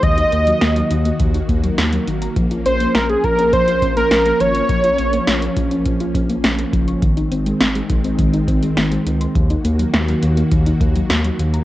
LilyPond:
<<
  \new Staff \with { instrumentName = "Analog synth lead" } { \time 4/4 \key bes \minor \tempo 4 = 103 ees''2 r2 | r8 c''8 bes'16 aes'16 bes'8 c''8. bes'16 bes'8 des''8~ | des''4. r2 r8 | r1 |
r1 | }
  \new Staff \with { instrumentName = "String machine" } { \time 4/4 \key bes \minor << { <ees ges'>1 | <f des'>1~ | <f des'>1 | <ees c'>1 |
<ees ges'>1 | } \\ { bes1~ | bes1~ | bes1 | aes1 |
bes1 | } >> }
  \new Staff \with { instrumentName = "Synth arpeggio sound" } { \time 4/4 \key bes \minor ees16 ees'16 bes16 ges16 bes16 ges16 ees16 bes16 ees16 ees'16 bes16 ges16 bes16 ges16 ees16 bes''16 | f16 f'16 des'16 bes16 des'16 bes16 f16 des'16 f16 f'16 des'16 bes16 des'16 bes16 f16 des'''16 | f16 f'16 des'16 bes16 des'16 bes16 f16 des'16 f16 f'16 des'16 bes16 des'16 bes16 f16 des'''16 | ees16 ees'16 c'16 aes16 c'16 aes16 ees16 c'16 ees16 ees'16 c'16 aes16 c'16 aes16 ees16 c'''16 |
ees16 ees'16 bes16 ges16 bes16 ges16 ees16 bes16 ees16 ees'16 bes16 ges16 bes16 ges16 ees16 bes''16 | }
  \new Staff \with { instrumentName = "Analog synth bass" } { \clef bass \time 4/4 \key bes \minor ees,8 ees,8 ees,8 ees,8 ees,8 ees,8 ees,8 aes,,8 | bes,,8 bes,,8 bes,,8 bes,,8 bes,,8 bes,,8 bes,,8 aes,,8 | bes,,8 bes,,8 bes,,8 bes,,8 bes,,8 bes,,8 bes,,8 ges,,8 | aes,,8 aes,,8 aes,,8 aes,,8 aes,,8 aes,,8 aes,,8 des,8 |
ees,8 ees,8 ees,8 ees,8 ees,8 ees,8 ees,8 ees,8 | }
  \new DrumStaff \with { instrumentName = "Drums" } \drummode { \time 4/4 <hh bd>16 hh16 hh16 hh16 <hh sn>16 hh16 hh16 hh16 <hh bd>16 hh16 <hh bd>16 hh16 <hh sn>16 hh16 hh16 hh16 | <hh bd>16 hh16 hh16 hh16 <hh sn>16 hh16 <hh bd>16 hh16 <hh bd>16 hh16 <hh bd>16 hh16 <hh sn>16 hh16 hh16 hh16 | <hh bd>16 hh16 hh16 hh16 <hh sn>16 hh16 <hh bd>16 hh16 <hh bd>16 hh16 <hh bd>16 hh16 <hh sn>16 hh16 <hh bd>16 hh16 | <hh bd>16 hh16 hh16 hh16 <hh sn>16 hh16 <hh bd>16 hh16 <hh bd>16 hh16 <hh bd>16 hh16 <hh sn>16 hh16 hh16 hh16 |
<hh bd>16 hh16 hh16 hh16 <hh sn>16 hh16 hh16 hh16 <hh bd>16 hh16 <hh bd>16 hh16 <hh sn>16 hh16 hh16 hh16 | }
>>